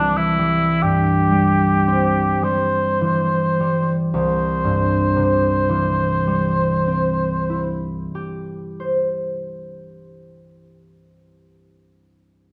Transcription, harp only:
Already playing: C2 G2 E3 G3 C4
0.39 G3
0.83 G2
1.31 G3
1.87 C4
2.43 G3
3.01 E3
3.60 G3
4.14 C2
4.64 G2
5.16 C3
5.69 E3
6.27 G3
6.88 C4
7.50 E4
8.15 G4
8.80 C5

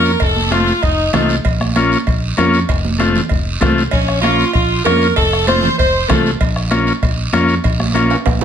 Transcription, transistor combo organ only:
Already playing: A#3 C#4 F4
0.51 A3 C4 F4
1.13 A3 C4 F4
1.76 A#3 C#4 F4
2.37 A#3 C#4 F4
2.98 A3 C4 F4
3.61 A3 C4 F4
4.23 A#3 C#4 F4
4.86 A#3 C#4 F4
5.47 A3 C4 F4
6.08 A3 C4 F4
6.71 A#3 C#4 F4
7.33 A#3 C#4 F4
7.94 A#3 C#4 F4

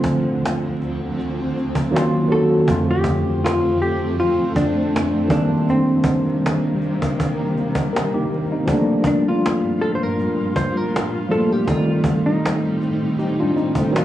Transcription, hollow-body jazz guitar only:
Already playing: C4
2.32 A4
2.91 G4
3.45 F4
3.82 G4
4.20 F4
4.56 D4
5.32 D4
5.70 C4
9.07 D4
9.28 F4
9.81 A4
9.95 C5
10.03 A#4
10.56 C5
10.77 A#4
11.31 A4
11.52 G4
11.68 F4
12.26 D#4

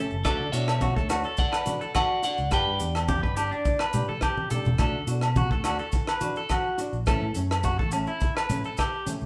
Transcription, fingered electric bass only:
0.12 F#1
0.25 D2
0.40 D3
0.53 B2
0.96 D2
2.38 C#2
2.52 G1
2.67 G2
2.80 E2
3.23 G1
4.65 E1
4.79 D2
4.94 D3
5.07 B2
5.51 D2
6.93 A#1
7.08 A1
7.22 A2
7.36 F#2
7.79 A1
9.22 C#2

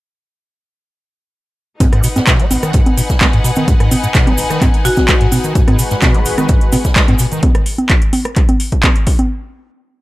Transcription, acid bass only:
1.80 G#2
1.92 G#2
2.04 B2
2.16 G#2
2.27 B2
2.40 G#3
2.51 G#1
2.63 D#3
2.74 G#2
2.97 B2
3.21 G#3
3.33 G#2
3.44 B2
3.57 D#3
3.68 G#2
3.80 G#2
3.91 B2
4.03 G#2
4.14 B2
4.27 G#3
4.38 G#1
4.50 D#3
4.62 G#2
4.85 B2
5.08 G#3
5.21 G#2
5.32 B2
5.44 D#3
5.55 G#2
5.68 G#2
5.79 B2
5.91 G#2
6.02 B2
6.15 G#3
6.26 G#1
6.38 D#3
6.49 G#2
6.73 B2
6.96 G#3
7.08 G#2
7.20 B2
7.32 D#3

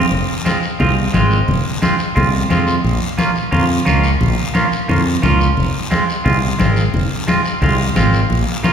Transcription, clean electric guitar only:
0.45 G#3 C4 F4
0.79 G#3 C4 F4
1.13 G#3 C4 F4
1.82 G#3 C4 F4
2.15 G#3 C4 F4
2.50 G#3 C4 F4
3.18 A#3 C#4 F4
3.51 A#3 C#4 F4
3.85 A#3 C#4 F4
4.54 A#3 C#4 F4
4.88 A#3 C#4 F4
5.22 A#3 C#4 F4
5.91 G#3 C4 F4
6.24 G#3 C4 F4
6.58 G#3 C4 F4
7.27 G#3 C4 F4
7.62 G#3 C4 F4
7.96 G#3 C4 F4
8.63 A#3 C#4 F4

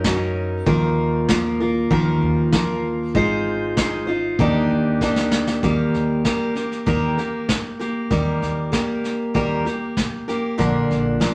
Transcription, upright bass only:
Already playing: F#2
0.67 D#2
1.91 D#2
2.22 D#2
3.15 G#1
4.39 D#2
4.70 D#2
5.63 D#2
5.95 D#2
6.87 D#2
8.11 D#2
8.42 D#2
9.35 D#2
10.59 A#1
10.90 A#1

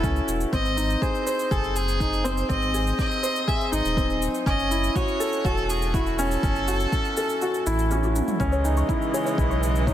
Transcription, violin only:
Already playing: A4
0.54 D#5
1.02 C5
1.51 A4
1.76 G#4
2.25 C5
2.50 D#5
2.99 D#5
3.48 E5
3.73 D#5
4.46 D#5
4.95 C#5
5.45 A4
5.70 G#4
5.94 F#4
6.19 A4

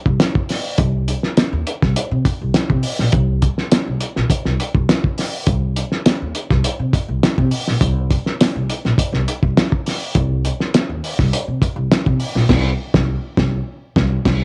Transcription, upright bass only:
0.06 C2
0.78 C2
1.37 muted upright bass stroke
1.53 D#2
1.83 C2
2.11 C3
2.41 C2
2.70 C3
2.99 A#1
3.13 C2
3.72 muted upright bass stroke
3.87 C2
4.17 A#1
4.30 muted upright bass stroke
4.45 C2
4.75 C2
5.47 C2
6.06 muted upright bass stroke
6.22 D#2
6.51 C2
6.79 C3
7.08 C2
7.38 C3
7.68 A#1
7.81 C2
8.40 muted upright bass stroke
8.56 C2
8.85 A#1
8.98 muted upright bass stroke
9.13 C2
9.43 C2
10.15 C2
10.73 muted upright bass stroke
10.89 D#2
11.19 C2
11.48 C3
11.76 C2
12.07 C3
12.35 A#1
12.50 C2
12.94 C2
13.38 C2
13.96 C2
14.26 C2

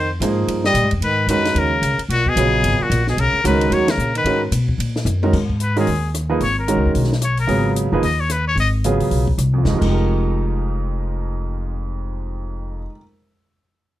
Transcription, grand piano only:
0.21 F3 A#3 D#4 G#4 C5
1.29 D#3 G#3 C#4 F#4 A#4
2.37 C#3 F#3 B3 F4 G#4
3.45 D#3 G#3 C#4 F#4 A#4
4.26 D#3 G#3 C#4 F#4 A#4
5.23 D#3 G#3 C#4 F#4 A#4
5.76 D#3 G#3 C#4 F#4 A#4
6.29 F3 A#3 D#4 G#4 B4
6.68 D#3 G#3 C#4 F#4 A#4
7.47 C#3 F#3 B3 F4 G#4
7.93 F3 A#3 D#4 G#4 B4
8.85 C#3 F#3 B3 F4 G#4
9.53 F2
9.58 F3
9.63 G#3
9.68 F2 D#4
9.73 F3 G4
9.78 G#3 A#4
9.84 D#4
9.90 G4
9.94 A#4

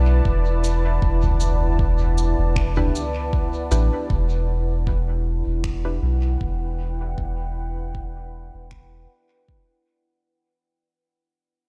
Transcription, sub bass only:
Already playing: B1
0.25 E1
1.02 E1
2.38 E1
3.71 A1
4.10 E1
5.46 E1
6.02 B1
6.41 E1
7.18 E1
8.54 E1

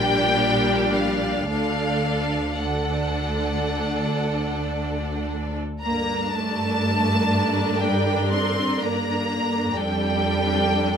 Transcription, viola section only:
Already playing: G3 D4
1.52 D3 D4
2.61 D3 D4
5.83 D3 D4
9.77 D3 D4

